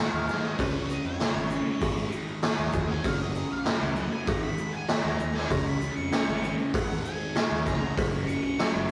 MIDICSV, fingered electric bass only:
0, 0, Header, 1, 2, 480
1, 0, Start_track
1, 0, Tempo, 616016
1, 1415, Time_signature, 4, 2, 24, 8
1, 6943, End_track
2, 0, Start_track
2, 0, Title_t, "Fingered electric bass"
2, 0, Program_c, 0, 33
2, 99, Note_on_c, 0, 39, 84
2, 196, Note_off_c, 0, 39, 0
2, 213, Note_on_c, 0, 44, 85
2, 410, Note_off_c, 0, 44, 0
2, 458, Note_on_c, 0, 37, 104
2, 750, Note_off_c, 0, 37, 0
2, 811, Note_on_c, 0, 41, 79
2, 911, Note_off_c, 0, 41, 0
2, 1051, Note_on_c, 0, 32, 85
2, 1248, Note_off_c, 0, 32, 0
2, 1416, Note_on_c, 0, 32, 87
2, 1611, Note_off_c, 0, 32, 0
2, 2011, Note_on_c, 0, 39, 87
2, 2110, Note_off_c, 0, 39, 0
2, 2133, Note_on_c, 0, 39, 89
2, 2329, Note_off_c, 0, 39, 0
2, 2372, Note_on_c, 0, 30, 101
2, 2666, Note_off_c, 0, 30, 0
2, 2737, Note_on_c, 0, 34, 77
2, 2834, Note_off_c, 0, 34, 0
2, 2974, Note_on_c, 0, 37, 89
2, 3169, Note_off_c, 0, 37, 0
2, 3330, Note_on_c, 0, 32, 96
2, 3527, Note_off_c, 0, 32, 0
2, 3933, Note_on_c, 0, 39, 88
2, 4031, Note_off_c, 0, 39, 0
2, 4045, Note_on_c, 0, 39, 90
2, 4244, Note_off_c, 0, 39, 0
2, 4291, Note_on_c, 0, 37, 100
2, 4585, Note_off_c, 0, 37, 0
2, 4653, Note_on_c, 0, 41, 86
2, 4751, Note_off_c, 0, 41, 0
2, 4888, Note_on_c, 0, 32, 94
2, 5086, Note_off_c, 0, 32, 0
2, 5250, Note_on_c, 0, 32, 94
2, 5447, Note_off_c, 0, 32, 0
2, 5851, Note_on_c, 0, 39, 86
2, 5950, Note_off_c, 0, 39, 0
2, 5973, Note_on_c, 0, 37, 89
2, 6169, Note_off_c, 0, 37, 0
2, 6213, Note_on_c, 0, 30, 104
2, 6507, Note_off_c, 0, 30, 0
2, 6569, Note_on_c, 0, 34, 86
2, 6669, Note_off_c, 0, 34, 0
2, 6817, Note_on_c, 0, 30, 95
2, 6943, Note_off_c, 0, 30, 0
2, 6943, End_track
0, 0, End_of_file